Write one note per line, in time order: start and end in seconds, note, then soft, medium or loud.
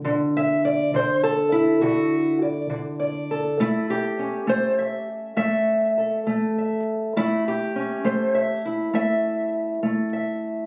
0.05 0.93 D3 medium
0.37 0.64 E5 medium
0.65 0.94 D5 medium
0.94 1.81 D3 medium
0.94 1.24 C5 medium
1.23 2.12 A4 medium
1.52 2.41 E4 medium
1.81 2.68 D3 medium
1.81 2.41 F#4 medium
2.42 2.98 D5 soft
2.70 3.55 D3 medium
3.00 3.56 D5 soft
3.31 3.93 A4 soft
3.60 4.47 A3 medium
3.60 3.90 E4 medium
3.90 5.08 G4 medium
4.19 7.12 C#4 soft
4.47 5.36 A3 medium
4.47 4.78 C5 medium
4.79 5.36 E5 medium
5.37 6.25 A3 medium
5.37 6.56 E5 loud
5.98 7.12 A4 soft
6.27 7.12 A3 medium
6.58 8.34 E5 soft
7.17 8.03 A3 medium
7.17 7.46 E4 medium
7.48 8.65 G4 medium
7.76 10.66 C#4 soft
8.04 8.92 A3 medium
8.04 8.34 C5 medium
8.35 8.94 E5 medium
8.65 10.66 E4 soft
8.93 9.81 A3 medium
8.93 10.12 E5 medium
9.83 10.66 A3 medium
10.13 10.66 E5 soft